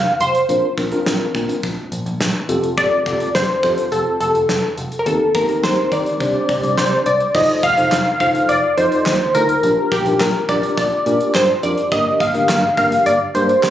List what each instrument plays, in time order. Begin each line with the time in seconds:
Already playing: analog polysynth F5
0.20 picked electric bass F1, analog polysynth C5, closed hi-hat
0.35 closed hi-hat
0.49 picked electric bass A#1, tine electric piano C4 D4 F4 A#4, closed hi-hat
0.78 picked electric bass A#1, tine electric piano C4 D4 F4 A#4, kick, closed hi-hat
0.92 tine electric piano C4 D4 F4 A#4, closed hi-hat
1.06 picked electric bass A#1, snare, closed hi-hat
1.35 picked electric bass A#2, kick, closed hi-hat
1.49 closed hi-hat
1.63 picked electric bass A#1, kick, closed hi-hat
1.92 picked electric bass A#1, closed hi-hat
2.06 picked electric bass A#1, closed hi-hat
2.20 picked electric bass A#1, snare, closed hi-hat
2.49 picked electric bass F1, tine electric piano C4 F4 G4 A4, closed hi-hat
2.63 closed hi-hat
2.78 analog polysynth D5, kick, closed hi-hat
3.06 picked electric bass F1, tine electric piano C4 F4 G4 A4, kick, closed hi-hat
3.20 closed hi-hat
3.35 picked electric bass F1, analog polysynth C5, snare, closed hi-hat
3.63 picked electric bass F2, tine electric piano C4 F4 G4 A4, kick, closed hi-hat
3.78 closed hi-hat
3.92 picked electric bass F1, analog polysynth A4, closed hi-hat
4.20 picked electric bass F1, analog polysynth A4, closed hi-hat
4.35 picked electric bass F1, closed hi-hat
4.49 picked electric bass F1, snare, closed hi-hat
4.78 picked electric bass F1, closed hi-hat
4.92 closed hi-hat
4.99 analog polysynth A#4
5.06 picked electric bass D#2, tine electric piano C4 D#4 G4 A#4, analog polysynth A4, closed hi-hat
5.35 picked electric bass D#2, tine electric piano C4 D#4 G4 A#4, analog polysynth A#4, kick, closed hi-hat
5.49 tine electric piano C4 D#4 G4 A#4, closed hi-hat
5.63 picked electric bass D#2, analog polysynth C5, snare, closed hi-hat
5.92 picked electric bass D#3, analog polysynth D5, kick, closed hi-hat
6.06 closed hi-hat
6.20 picked electric bass C2, tine electric piano C4 D4 G4 C5, kick, closed hi-hat
6.49 picked electric bass C2, kick, closed hi-hat
6.63 picked electric bass C2, closed hi-hat
6.77 picked electric bass C2, analog polysynth C5, snare, closed hi-hat
7.06 picked electric bass C2, analog polysynth D5, closed hi-hat
7.20 closed hi-hat
7.35 picked electric bass F1, tine electric piano D#4 F4 A4 C5, analog polysynth D#5, kick, crash
7.63 picked electric bass F1, analog polysynth F5, kick, closed hi-hat
7.77 picked electric bass F1, tine electric piano D#4 F4 A4 C5, closed hi-hat
7.92 picked electric bass F1, snare, clap, closed hi-hat
8.20 picked electric bass F1, tine electric piano D#4 F4 A4 C5, analog polysynth F5, kick, closed hi-hat
8.35 closed hi-hat
8.49 picked electric bass F1, analog polysynth D5, closed hi-hat
8.77 picked electric bass F2, tine electric piano D#4 F4 A4 D#5, analog polysynth C5, closed hi-hat
8.92 closed hi-hat
9.06 picked electric bass D#2, snare, clap, closed hi-hat
9.35 picked electric bass D2, tine electric piano D#4 F4 A4 C5, analog polysynth A#4, closed hi-hat
9.49 closed hi-hat
9.63 picked electric bass A#1, tine electric piano D4 F4 G4 A#4, closed hi-hat
9.92 picked electric bass A#1, analog polysynth G4, kick, closed hi-hat
10.06 picked electric bass A#1, tine electric piano D4 F4 G4 A#4, closed hi-hat
10.20 picked electric bass A#1, analog polysynth A#4, snare, clap, closed hi-hat
10.49 picked electric bass A#1, tine electric piano D4 F4 G4 A#4, analog polysynth D5, kick, closed hi-hat
10.63 closed hi-hat
10.77 picked electric bass A#1, analog polysynth D5, kick, closed hi-hat
11.06 picked electric bass A#2, tine electric piano D4 F4 G4 A#4, closed hi-hat
11.21 closed hi-hat
11.35 picked electric bass G2, analog polysynth C5, snare, clap, closed hi-hat
11.63 picked electric bass F2, tine electric piano D4 F4 G4 A#4, analog polysynth D5, closed hi-hat
11.78 closed hi-hat
11.92 picked electric bass G1, tine electric piano A#3 D4 G4 A#4, analog polysynth D#5, kick, closed hi-hat
12.20 picked electric bass G1, analog polysynth F5, kick, closed hi-hat
12.34 picked electric bass G1, tine electric piano A#3 D4 G4 A#4, closed hi-hat
12.49 picked electric bass G1, snare, clap, closed hi-hat
12.77 picked electric bass G1, tine electric piano A#3 D4 G4 A#4, analog polysynth F5, kick, closed hi-hat
12.92 closed hi-hat
13.06 picked electric bass G1, analog polysynth D5, closed hi-hat
13.35 picked electric bass G2, tine electric piano A#3 D4 G4 A#4, analog polysynth C5, closed hi-hat
13.49 closed hi-hat
13.63 picked electric bass D2, snare, clap, closed hi-hat